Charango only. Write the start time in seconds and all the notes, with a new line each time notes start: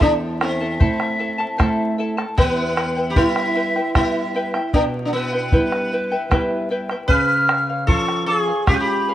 0.00 E4 A4 C5 E5 A5
0.41 E4 A4 E5 A5
0.60 E4 A4 A5
0.80 E4 A4 C5 E5 A5
1.19 E4 A4 E5 A5
1.38 E4 A4 A5
1.58 E4 A4 C5 E5 A5
1.98 E4 A4 E5 A5
2.17 E4 A4 A5
2.38 E4 G4 B4 E5 G5
2.76 E4 B4 E5 G5
2.96 E4 B4 G5
3.16 E4 G4 B4 E5 G5
3.55 E4 B4 E5 G5
3.76 E4 B4 G5
3.96 E4 G4 B4 E5 G5
4.34 E4 B4 E5 G5
4.54 E4 B4 G5
4.75 E4 G4 B4 E5 G5
5.13 E4 B4 E5 G5
5.33 E4 B4 G5
5.52 E4 G4 B4 E5 G5
5.92 E4 B4 E5 G5
6.11 E4 B4 G5
6.31 E4 G4 B4 E5 G5
6.70 E4 B4 E5 G5
6.91 E4 B4 G5
7.10 G#4 C#5 F5
7.49 G#4 C#5 F5
7.69 C#5 F5
7.89 C#5 F5
8.28 G#4 C#5 F5
8.48 C#5 F5
8.68 G#4 C#5 F5
9.08 G#4 C#5 F5